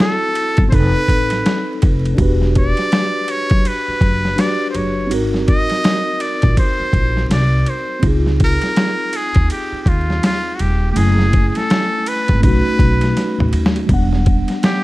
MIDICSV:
0, 0, Header, 1, 6, 480
1, 0, Start_track
1, 0, Tempo, 731707
1, 1431, Time_signature, 4, 2, 24, 8
1, 9734, End_track
2, 0, Start_track
2, 0, Title_t, "Muted trumpet"
2, 0, Program_c, 0, 59
2, 8, Note_on_c, 0, 69, 97
2, 418, Note_off_c, 0, 69, 0
2, 456, Note_on_c, 0, 72, 64
2, 487, Note_on_c, 0, 71, 103
2, 497, Note_off_c, 0, 72, 0
2, 1199, Note_off_c, 0, 71, 0
2, 1690, Note_on_c, 0, 74, 104
2, 2167, Note_on_c, 0, 73, 96
2, 2177, Note_off_c, 0, 74, 0
2, 2411, Note_on_c, 0, 71, 90
2, 2421, Note_off_c, 0, 73, 0
2, 2887, Note_on_c, 0, 74, 91
2, 2896, Note_off_c, 0, 71, 0
2, 3084, Note_off_c, 0, 74, 0
2, 3087, Note_on_c, 0, 72, 56
2, 3123, Note_on_c, 0, 73, 72
2, 3133, Note_off_c, 0, 72, 0
2, 3357, Note_off_c, 0, 73, 0
2, 3600, Note_on_c, 0, 75, 111
2, 4074, Note_on_c, 0, 74, 89
2, 4084, Note_off_c, 0, 75, 0
2, 4312, Note_off_c, 0, 74, 0
2, 4321, Note_on_c, 0, 72, 91
2, 4770, Note_off_c, 0, 72, 0
2, 4805, Note_on_c, 0, 74, 82
2, 5048, Note_on_c, 0, 72, 68
2, 5058, Note_off_c, 0, 74, 0
2, 5280, Note_off_c, 0, 72, 0
2, 5536, Note_on_c, 0, 70, 96
2, 6011, Note_on_c, 0, 68, 89
2, 6021, Note_off_c, 0, 70, 0
2, 6239, Note_off_c, 0, 68, 0
2, 6242, Note_on_c, 0, 67, 84
2, 6442, Note_off_c, 0, 67, 0
2, 6442, Note_on_c, 0, 67, 59
2, 6483, Note_on_c, 0, 65, 78
2, 6493, Note_off_c, 0, 67, 0
2, 6717, Note_off_c, 0, 65, 0
2, 6728, Note_on_c, 0, 65, 85
2, 6921, Note_on_c, 0, 66, 63
2, 6931, Note_off_c, 0, 65, 0
2, 6959, Note_on_c, 0, 67, 75
2, 6969, Note_off_c, 0, 66, 0
2, 7160, Note_off_c, 0, 67, 0
2, 7163, Note_on_c, 0, 67, 74
2, 7196, Note_on_c, 0, 68, 99
2, 7206, Note_off_c, 0, 67, 0
2, 7534, Note_off_c, 0, 68, 0
2, 7534, Note_on_c, 0, 68, 64
2, 7589, Note_on_c, 0, 69, 96
2, 7599, Note_off_c, 0, 68, 0
2, 7925, Note_on_c, 0, 71, 92
2, 7935, Note_off_c, 0, 69, 0
2, 8155, Note_off_c, 0, 71, 0
2, 8159, Note_on_c, 0, 71, 102
2, 8849, Note_off_c, 0, 71, 0
2, 9607, Note_on_c, 0, 67, 88
2, 9734, Note_off_c, 0, 67, 0
2, 9734, End_track
3, 0, Start_track
3, 0, Title_t, "Tine electric piano"
3, 0, Program_c, 1, 4
3, 0, Note_on_c, 1, 60, 56
3, 0, Note_on_c, 1, 64, 50
3, 0, Note_on_c, 1, 66, 50
3, 0, Note_on_c, 1, 69, 67
3, 440, Note_off_c, 1, 60, 0
3, 449, Note_off_c, 1, 64, 0
3, 449, Note_on_c, 1, 60, 54
3, 456, Note_off_c, 1, 66, 0
3, 465, Note_off_c, 1, 69, 0
3, 466, Note_on_c, 1, 63, 55
3, 481, Note_on_c, 1, 69, 57
3, 498, Note_on_c, 1, 71, 68
3, 1401, Note_off_c, 1, 60, 0
3, 1409, Note_off_c, 1, 63, 0
3, 1409, Note_on_c, 1, 62, 66
3, 1417, Note_off_c, 1, 69, 0
3, 1426, Note_off_c, 1, 71, 0
3, 1426, Note_on_c, 1, 66, 60
3, 1441, Note_on_c, 1, 67, 58
3, 1458, Note_on_c, 1, 71, 69
3, 2834, Note_off_c, 1, 62, 0
3, 2842, Note_off_c, 1, 66, 0
3, 2850, Note_off_c, 1, 67, 0
3, 2858, Note_off_c, 1, 71, 0
3, 2860, Note_on_c, 1, 62, 53
3, 2870, Note_on_c, 1, 66, 46
3, 2878, Note_on_c, 1, 67, 44
3, 2885, Note_on_c, 1, 71, 48
3, 3324, Note_on_c, 1, 60, 56
3, 3339, Note_on_c, 1, 63, 50
3, 3345, Note_off_c, 1, 62, 0
3, 3346, Note_off_c, 1, 66, 0
3, 3354, Note_on_c, 1, 66, 53
3, 3355, Note_off_c, 1, 67, 0
3, 3358, Note_off_c, 1, 71, 0
3, 3372, Note_on_c, 1, 70, 68
3, 5231, Note_off_c, 1, 60, 0
3, 5239, Note_off_c, 1, 63, 0
3, 5245, Note_on_c, 1, 60, 57
3, 5246, Note_off_c, 1, 66, 0
3, 5255, Note_off_c, 1, 70, 0
3, 5261, Note_on_c, 1, 63, 50
3, 5277, Note_on_c, 1, 65, 52
3, 5295, Note_on_c, 1, 68, 64
3, 7152, Note_off_c, 1, 60, 0
3, 7160, Note_off_c, 1, 63, 0
3, 7168, Note_off_c, 1, 65, 0
3, 7168, Note_on_c, 1, 57, 56
3, 7177, Note_off_c, 1, 68, 0
3, 7184, Note_on_c, 1, 61, 52
3, 7200, Note_on_c, 1, 64, 51
3, 7216, Note_on_c, 1, 80, 59
3, 8120, Note_off_c, 1, 57, 0
3, 8128, Note_off_c, 1, 61, 0
3, 8130, Note_on_c, 1, 57, 61
3, 8137, Note_off_c, 1, 64, 0
3, 8145, Note_off_c, 1, 80, 0
3, 8147, Note_on_c, 1, 61, 52
3, 8163, Note_on_c, 1, 63, 57
3, 8180, Note_on_c, 1, 66, 65
3, 9081, Note_off_c, 1, 57, 0
3, 9090, Note_off_c, 1, 61, 0
3, 9094, Note_on_c, 1, 55, 68
3, 9098, Note_off_c, 1, 63, 0
3, 9107, Note_off_c, 1, 66, 0
3, 9109, Note_on_c, 1, 59, 62
3, 9126, Note_on_c, 1, 62, 59
3, 9143, Note_on_c, 1, 78, 73
3, 9734, Note_off_c, 1, 55, 0
3, 9734, Note_off_c, 1, 59, 0
3, 9734, Note_off_c, 1, 62, 0
3, 9734, Note_off_c, 1, 78, 0
3, 9734, End_track
4, 0, Start_track
4, 0, Title_t, "Upright bass"
4, 0, Program_c, 2, 32
4, 381, Note_on_c, 2, 31, 90
4, 461, Note_off_c, 2, 31, 0
4, 475, Note_on_c, 2, 29, 93
4, 603, Note_off_c, 2, 29, 0
4, 712, Note_on_c, 2, 33, 80
4, 923, Note_off_c, 2, 33, 0
4, 1201, Note_on_c, 2, 29, 90
4, 1408, Note_off_c, 2, 29, 0
4, 1432, Note_on_c, 2, 28, 95
4, 1773, Note_off_c, 2, 28, 0
4, 2302, Note_on_c, 2, 30, 86
4, 2382, Note_off_c, 2, 30, 0
4, 2631, Note_on_c, 2, 30, 94
4, 2842, Note_off_c, 2, 30, 0
4, 3115, Note_on_c, 2, 30, 80
4, 3351, Note_off_c, 2, 30, 0
4, 3351, Note_on_c, 2, 32, 102
4, 3692, Note_off_c, 2, 32, 0
4, 4221, Note_on_c, 2, 34, 84
4, 4301, Note_off_c, 2, 34, 0
4, 4547, Note_on_c, 2, 34, 86
4, 4760, Note_off_c, 2, 34, 0
4, 4788, Note_on_c, 2, 36, 77
4, 5001, Note_off_c, 2, 36, 0
4, 5267, Note_on_c, 2, 37, 90
4, 5610, Note_off_c, 2, 37, 0
4, 6139, Note_on_c, 2, 39, 95
4, 6220, Note_off_c, 2, 39, 0
4, 6468, Note_on_c, 2, 39, 95
4, 6681, Note_off_c, 2, 39, 0
4, 6955, Note_on_c, 2, 27, 82
4, 7165, Note_off_c, 2, 27, 0
4, 7192, Note_on_c, 2, 30, 94
4, 7532, Note_off_c, 2, 30, 0
4, 8063, Note_on_c, 2, 32, 89
4, 8143, Note_off_c, 2, 32, 0
4, 8158, Note_on_c, 2, 35, 81
4, 8285, Note_off_c, 2, 35, 0
4, 8392, Note_on_c, 2, 35, 81
4, 8603, Note_off_c, 2, 35, 0
4, 8781, Note_on_c, 2, 33, 77
4, 8861, Note_off_c, 2, 33, 0
4, 8874, Note_on_c, 2, 39, 76
4, 9084, Note_off_c, 2, 39, 0
4, 9112, Note_on_c, 2, 28, 102
4, 9453, Note_off_c, 2, 28, 0
4, 9734, End_track
5, 0, Start_track
5, 0, Title_t, "Muted upright bass strokes"
5, 617, Note_on_c, 9, 29, 40
5, 682, Note_off_c, 9, 29, 0
5, 2548, Note_on_c, 9, 29, 47
5, 2613, Note_off_c, 9, 29, 0
5, 4460, Note_on_c, 9, 29, 39
5, 4526, Note_off_c, 9, 29, 0
5, 6377, Note_on_c, 9, 29, 43
5, 6443, Note_off_c, 9, 29, 0
5, 8305, Note_on_c, 9, 29, 43
5, 8370, Note_off_c, 9, 29, 0
5, 9734, End_track
6, 0, Start_track
6, 0, Title_t, "Drums"
6, 1, Note_on_c, 9, 38, 115
6, 66, Note_off_c, 9, 38, 0
6, 232, Note_on_c, 9, 51, 62
6, 298, Note_off_c, 9, 51, 0
6, 373, Note_on_c, 9, 51, 46
6, 381, Note_on_c, 9, 36, 91
6, 438, Note_off_c, 9, 51, 0
6, 446, Note_off_c, 9, 36, 0
6, 475, Note_on_c, 9, 36, 96
6, 475, Note_on_c, 9, 51, 69
6, 540, Note_off_c, 9, 36, 0
6, 540, Note_off_c, 9, 51, 0
6, 711, Note_on_c, 9, 36, 69
6, 716, Note_on_c, 9, 51, 58
6, 777, Note_off_c, 9, 36, 0
6, 782, Note_off_c, 9, 51, 0
6, 853, Note_on_c, 9, 51, 46
6, 867, Note_on_c, 9, 38, 33
6, 919, Note_off_c, 9, 51, 0
6, 933, Note_off_c, 9, 38, 0
6, 956, Note_on_c, 9, 44, 45
6, 956, Note_on_c, 9, 51, 62
6, 960, Note_on_c, 9, 38, 90
6, 1021, Note_off_c, 9, 44, 0
6, 1021, Note_off_c, 9, 51, 0
6, 1025, Note_off_c, 9, 38, 0
6, 1194, Note_on_c, 9, 51, 53
6, 1200, Note_on_c, 9, 36, 76
6, 1259, Note_off_c, 9, 51, 0
6, 1266, Note_off_c, 9, 36, 0
6, 1348, Note_on_c, 9, 51, 40
6, 1414, Note_off_c, 9, 51, 0
6, 1432, Note_on_c, 9, 36, 110
6, 1433, Note_on_c, 9, 51, 70
6, 1498, Note_off_c, 9, 36, 0
6, 1498, Note_off_c, 9, 51, 0
6, 1584, Note_on_c, 9, 38, 35
6, 1650, Note_off_c, 9, 38, 0
6, 1675, Note_on_c, 9, 51, 62
6, 1679, Note_on_c, 9, 36, 85
6, 1741, Note_off_c, 9, 51, 0
6, 1745, Note_off_c, 9, 36, 0
6, 1817, Note_on_c, 9, 51, 38
6, 1830, Note_on_c, 9, 38, 35
6, 1883, Note_off_c, 9, 51, 0
6, 1896, Note_off_c, 9, 38, 0
6, 1916, Note_on_c, 9, 44, 41
6, 1916, Note_on_c, 9, 51, 61
6, 1921, Note_on_c, 9, 38, 117
6, 1981, Note_off_c, 9, 44, 0
6, 1981, Note_off_c, 9, 51, 0
6, 1987, Note_off_c, 9, 38, 0
6, 2151, Note_on_c, 9, 51, 62
6, 2217, Note_off_c, 9, 51, 0
6, 2293, Note_on_c, 9, 51, 44
6, 2302, Note_on_c, 9, 36, 92
6, 2359, Note_off_c, 9, 51, 0
6, 2368, Note_off_c, 9, 36, 0
6, 2395, Note_on_c, 9, 51, 67
6, 2461, Note_off_c, 9, 51, 0
6, 2631, Note_on_c, 9, 36, 82
6, 2634, Note_on_c, 9, 51, 51
6, 2697, Note_off_c, 9, 36, 0
6, 2700, Note_off_c, 9, 51, 0
6, 2789, Note_on_c, 9, 38, 33
6, 2854, Note_off_c, 9, 38, 0
6, 2875, Note_on_c, 9, 44, 50
6, 2875, Note_on_c, 9, 51, 72
6, 2878, Note_on_c, 9, 38, 83
6, 2940, Note_off_c, 9, 44, 0
6, 2940, Note_off_c, 9, 51, 0
6, 2944, Note_off_c, 9, 38, 0
6, 3113, Note_on_c, 9, 51, 56
6, 3178, Note_off_c, 9, 51, 0
6, 3352, Note_on_c, 9, 51, 71
6, 3418, Note_off_c, 9, 51, 0
6, 3505, Note_on_c, 9, 38, 37
6, 3570, Note_off_c, 9, 38, 0
6, 3594, Note_on_c, 9, 51, 54
6, 3597, Note_on_c, 9, 36, 72
6, 3660, Note_off_c, 9, 51, 0
6, 3662, Note_off_c, 9, 36, 0
6, 3736, Note_on_c, 9, 51, 36
6, 3749, Note_on_c, 9, 38, 33
6, 3802, Note_off_c, 9, 51, 0
6, 3815, Note_off_c, 9, 38, 0
6, 3833, Note_on_c, 9, 44, 46
6, 3833, Note_on_c, 9, 51, 60
6, 3838, Note_on_c, 9, 38, 119
6, 3898, Note_off_c, 9, 44, 0
6, 3898, Note_off_c, 9, 51, 0
6, 3904, Note_off_c, 9, 38, 0
6, 4068, Note_on_c, 9, 51, 59
6, 4134, Note_off_c, 9, 51, 0
6, 4212, Note_on_c, 9, 51, 46
6, 4219, Note_on_c, 9, 36, 85
6, 4277, Note_off_c, 9, 51, 0
6, 4285, Note_off_c, 9, 36, 0
6, 4311, Note_on_c, 9, 36, 89
6, 4311, Note_on_c, 9, 51, 69
6, 4377, Note_off_c, 9, 36, 0
6, 4377, Note_off_c, 9, 51, 0
6, 4547, Note_on_c, 9, 36, 79
6, 4550, Note_on_c, 9, 51, 55
6, 4612, Note_off_c, 9, 36, 0
6, 4615, Note_off_c, 9, 51, 0
6, 4703, Note_on_c, 9, 38, 38
6, 4768, Note_off_c, 9, 38, 0
6, 4793, Note_on_c, 9, 44, 47
6, 4793, Note_on_c, 9, 51, 71
6, 4797, Note_on_c, 9, 38, 83
6, 4859, Note_off_c, 9, 44, 0
6, 4859, Note_off_c, 9, 51, 0
6, 4862, Note_off_c, 9, 38, 0
6, 5028, Note_on_c, 9, 51, 54
6, 5093, Note_off_c, 9, 51, 0
6, 5266, Note_on_c, 9, 51, 63
6, 5267, Note_on_c, 9, 36, 97
6, 5331, Note_off_c, 9, 51, 0
6, 5332, Note_off_c, 9, 36, 0
6, 5420, Note_on_c, 9, 38, 36
6, 5485, Note_off_c, 9, 38, 0
6, 5510, Note_on_c, 9, 51, 59
6, 5513, Note_on_c, 9, 36, 77
6, 5575, Note_off_c, 9, 51, 0
6, 5579, Note_off_c, 9, 36, 0
6, 5651, Note_on_c, 9, 51, 41
6, 5664, Note_on_c, 9, 38, 33
6, 5717, Note_off_c, 9, 51, 0
6, 5730, Note_off_c, 9, 38, 0
6, 5749, Note_on_c, 9, 44, 42
6, 5749, Note_on_c, 9, 51, 60
6, 5755, Note_on_c, 9, 38, 105
6, 5815, Note_off_c, 9, 44, 0
6, 5815, Note_off_c, 9, 51, 0
6, 5820, Note_off_c, 9, 38, 0
6, 5988, Note_on_c, 9, 51, 66
6, 6054, Note_off_c, 9, 51, 0
6, 6131, Note_on_c, 9, 51, 45
6, 6139, Note_on_c, 9, 36, 82
6, 6196, Note_off_c, 9, 51, 0
6, 6204, Note_off_c, 9, 36, 0
6, 6231, Note_on_c, 9, 51, 69
6, 6297, Note_off_c, 9, 51, 0
6, 6468, Note_on_c, 9, 36, 68
6, 6473, Note_on_c, 9, 51, 55
6, 6534, Note_off_c, 9, 36, 0
6, 6538, Note_off_c, 9, 51, 0
6, 6626, Note_on_c, 9, 38, 37
6, 6692, Note_off_c, 9, 38, 0
6, 6712, Note_on_c, 9, 44, 47
6, 6712, Note_on_c, 9, 51, 70
6, 6716, Note_on_c, 9, 38, 90
6, 6778, Note_off_c, 9, 44, 0
6, 6778, Note_off_c, 9, 51, 0
6, 6782, Note_off_c, 9, 38, 0
6, 6949, Note_on_c, 9, 51, 60
6, 7015, Note_off_c, 9, 51, 0
6, 7190, Note_on_c, 9, 51, 74
6, 7255, Note_off_c, 9, 51, 0
6, 7342, Note_on_c, 9, 38, 36
6, 7408, Note_off_c, 9, 38, 0
6, 7434, Note_on_c, 9, 51, 57
6, 7437, Note_on_c, 9, 36, 77
6, 7499, Note_off_c, 9, 51, 0
6, 7503, Note_off_c, 9, 36, 0
6, 7578, Note_on_c, 9, 51, 38
6, 7591, Note_on_c, 9, 38, 31
6, 7644, Note_off_c, 9, 51, 0
6, 7657, Note_off_c, 9, 38, 0
6, 7677, Note_on_c, 9, 44, 47
6, 7677, Note_on_c, 9, 51, 68
6, 7682, Note_on_c, 9, 38, 113
6, 7742, Note_off_c, 9, 44, 0
6, 7742, Note_off_c, 9, 51, 0
6, 7748, Note_off_c, 9, 38, 0
6, 7914, Note_on_c, 9, 51, 68
6, 7979, Note_off_c, 9, 51, 0
6, 8056, Note_on_c, 9, 51, 48
6, 8063, Note_on_c, 9, 36, 84
6, 8122, Note_off_c, 9, 51, 0
6, 8129, Note_off_c, 9, 36, 0
6, 8155, Note_on_c, 9, 51, 70
6, 8156, Note_on_c, 9, 36, 100
6, 8221, Note_off_c, 9, 51, 0
6, 8222, Note_off_c, 9, 36, 0
6, 8391, Note_on_c, 9, 36, 79
6, 8395, Note_on_c, 9, 51, 53
6, 8457, Note_off_c, 9, 36, 0
6, 8461, Note_off_c, 9, 51, 0
6, 8536, Note_on_c, 9, 51, 40
6, 8549, Note_on_c, 9, 38, 34
6, 8601, Note_off_c, 9, 51, 0
6, 8615, Note_off_c, 9, 38, 0
6, 8638, Note_on_c, 9, 44, 51
6, 8638, Note_on_c, 9, 51, 70
6, 8641, Note_on_c, 9, 38, 46
6, 8703, Note_off_c, 9, 44, 0
6, 8703, Note_off_c, 9, 51, 0
6, 8707, Note_off_c, 9, 38, 0
6, 8792, Note_on_c, 9, 45, 62
6, 8858, Note_off_c, 9, 45, 0
6, 8874, Note_on_c, 9, 51, 56
6, 8939, Note_off_c, 9, 51, 0
6, 8960, Note_on_c, 9, 38, 103
6, 9026, Note_off_c, 9, 38, 0
6, 9026, Note_on_c, 9, 51, 45
6, 9091, Note_off_c, 9, 51, 0
6, 9112, Note_on_c, 9, 36, 104
6, 9112, Note_on_c, 9, 51, 68
6, 9178, Note_off_c, 9, 36, 0
6, 9178, Note_off_c, 9, 51, 0
6, 9266, Note_on_c, 9, 38, 39
6, 9332, Note_off_c, 9, 38, 0
6, 9355, Note_on_c, 9, 51, 55
6, 9359, Note_on_c, 9, 36, 80
6, 9420, Note_off_c, 9, 51, 0
6, 9424, Note_off_c, 9, 36, 0
6, 9499, Note_on_c, 9, 51, 38
6, 9512, Note_on_c, 9, 38, 32
6, 9564, Note_off_c, 9, 51, 0
6, 9577, Note_off_c, 9, 38, 0
6, 9598, Note_on_c, 9, 44, 47
6, 9598, Note_on_c, 9, 51, 61
6, 9603, Note_on_c, 9, 38, 117
6, 9663, Note_off_c, 9, 44, 0
6, 9663, Note_off_c, 9, 51, 0
6, 9669, Note_off_c, 9, 38, 0
6, 9734, End_track
0, 0, End_of_file